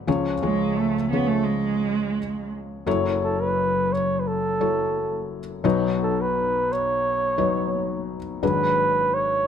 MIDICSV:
0, 0, Header, 1, 4, 480
1, 0, Start_track
1, 0, Key_signature, 3, "minor"
1, 0, Tempo, 696056
1, 50, Time_signature, 4, 2, 24, 8
1, 6531, End_track
2, 0, Start_track
2, 0, Title_t, "Flugelhorn"
2, 0, Program_c, 0, 56
2, 2232, Note_on_c, 0, 69, 69
2, 2349, Note_on_c, 0, 71, 84
2, 2360, Note_off_c, 0, 69, 0
2, 2708, Note_on_c, 0, 73, 77
2, 2718, Note_off_c, 0, 71, 0
2, 2897, Note_on_c, 0, 71, 54
2, 2907, Note_off_c, 0, 73, 0
2, 2949, Note_on_c, 0, 69, 76
2, 2959, Note_off_c, 0, 71, 0
2, 3661, Note_off_c, 0, 69, 0
2, 4159, Note_on_c, 0, 69, 77
2, 4283, Note_on_c, 0, 71, 98
2, 4293, Note_off_c, 0, 69, 0
2, 4636, Note_on_c, 0, 73, 92
2, 4646, Note_off_c, 0, 71, 0
2, 5582, Note_off_c, 0, 73, 0
2, 5819, Note_on_c, 0, 71, 97
2, 6303, Note_on_c, 0, 73, 89
2, 6313, Note_off_c, 0, 71, 0
2, 6531, Note_off_c, 0, 73, 0
2, 6531, End_track
3, 0, Start_track
3, 0, Title_t, "Felt piano"
3, 0, Program_c, 1, 0
3, 0, Control_c, 1, 64, 127
3, 51, Note_on_c, 1, 53, 65
3, 52, Note_on_c, 1, 49, 56
3, 53, Note_on_c, 1, 68, 59
3, 56, Note_on_c, 1, 37, 55
3, 56, Note_on_c, 1, 61, 61
3, 56, Note_on_c, 1, 73, 78
3, 59, Control_c, 1, 64, 0
3, 160, Control_c, 1, 64, 127
3, 231, Note_off_c, 1, 53, 0
3, 232, Note_off_c, 1, 68, 0
3, 234, Note_off_c, 1, 61, 0
3, 234, Note_off_c, 1, 73, 0
3, 292, Note_on_c, 1, 53, 57
3, 293, Note_on_c, 1, 61, 51
3, 295, Note_on_c, 1, 68, 49
3, 296, Note_on_c, 1, 73, 66
3, 652, Note_off_c, 1, 53, 0
3, 653, Note_off_c, 1, 61, 0
3, 653, Note_off_c, 1, 68, 0
3, 654, Note_off_c, 1, 73, 0
3, 775, Note_on_c, 1, 53, 51
3, 778, Note_on_c, 1, 61, 47
3, 780, Note_on_c, 1, 68, 47
3, 784, Note_on_c, 1, 73, 57
3, 1496, Note_off_c, 1, 53, 0
3, 1497, Note_off_c, 1, 61, 0
3, 1498, Note_off_c, 1, 68, 0
3, 1500, Note_off_c, 1, 73, 0
3, 1948, Note_off_c, 1, 49, 0
3, 1950, Note_off_c, 1, 37, 0
3, 1975, Note_on_c, 1, 42, 58
3, 1976, Note_on_c, 1, 54, 65
3, 1977, Note_on_c, 1, 64, 56
3, 1978, Note_on_c, 1, 30, 57
3, 1979, Note_on_c, 1, 69, 58
3, 1981, Note_on_c, 1, 73, 81
3, 1984, Control_c, 1, 64, 0
3, 2094, Control_c, 1, 64, 127
3, 2697, Note_off_c, 1, 54, 0
3, 2697, Note_off_c, 1, 64, 0
3, 2698, Note_off_c, 1, 69, 0
3, 2700, Note_off_c, 1, 73, 0
3, 3175, Note_on_c, 1, 54, 53
3, 3178, Note_on_c, 1, 69, 50
3, 3178, Note_on_c, 1, 73, 63
3, 3179, Note_on_c, 1, 64, 48
3, 3715, Note_off_c, 1, 54, 0
3, 3716, Note_off_c, 1, 69, 0
3, 3716, Note_off_c, 1, 73, 0
3, 3717, Note_off_c, 1, 64, 0
3, 3867, Note_off_c, 1, 42, 0
3, 3868, Note_off_c, 1, 30, 0
3, 3889, Note_on_c, 1, 54, 76
3, 3892, Note_on_c, 1, 35, 59
3, 3893, Note_on_c, 1, 71, 67
3, 3894, Note_on_c, 1, 47, 66
3, 3894, Note_on_c, 1, 63, 70
3, 3896, Note_on_c, 1, 73, 77
3, 3902, Control_c, 1, 64, 0
3, 4032, Control_c, 1, 64, 127
3, 4611, Note_off_c, 1, 54, 0
3, 4613, Note_off_c, 1, 63, 0
3, 4613, Note_off_c, 1, 71, 0
3, 4614, Note_off_c, 1, 73, 0
3, 5088, Note_on_c, 1, 63, 56
3, 5089, Note_on_c, 1, 54, 64
3, 5089, Note_on_c, 1, 71, 56
3, 5092, Note_on_c, 1, 73, 57
3, 5629, Note_off_c, 1, 63, 0
3, 5630, Note_off_c, 1, 54, 0
3, 5630, Note_off_c, 1, 71, 0
3, 5632, Note_off_c, 1, 73, 0
3, 5781, Note_off_c, 1, 35, 0
3, 5782, Note_off_c, 1, 47, 0
3, 5811, Note_on_c, 1, 32, 50
3, 5811, Note_on_c, 1, 54, 59
3, 5812, Note_on_c, 1, 44, 50
3, 5812, Note_on_c, 1, 62, 59
3, 5814, Note_on_c, 1, 68, 57
3, 5814, Note_on_c, 1, 71, 62
3, 5818, Control_c, 1, 64, 0
3, 5939, Control_c, 1, 64, 127
3, 6530, Note_off_c, 1, 54, 0
3, 6530, Note_off_c, 1, 62, 0
3, 6531, Note_off_c, 1, 32, 0
3, 6531, Note_off_c, 1, 44, 0
3, 6531, Note_off_c, 1, 68, 0
3, 6531, Note_off_c, 1, 71, 0
3, 6531, End_track
4, 0, Start_track
4, 0, Title_t, "Cello"
4, 0, Program_c, 2, 42
4, 292, Note_on_c, 2, 56, 67
4, 528, Note_on_c, 2, 57, 69
4, 539, Note_off_c, 2, 56, 0
4, 757, Note_off_c, 2, 57, 0
4, 761, Note_on_c, 2, 59, 71
4, 876, Note_on_c, 2, 57, 77
4, 886, Note_off_c, 2, 59, 0
4, 993, Note_on_c, 2, 56, 68
4, 1003, Note_off_c, 2, 57, 0
4, 1724, Note_off_c, 2, 56, 0
4, 6531, End_track
0, 0, End_of_file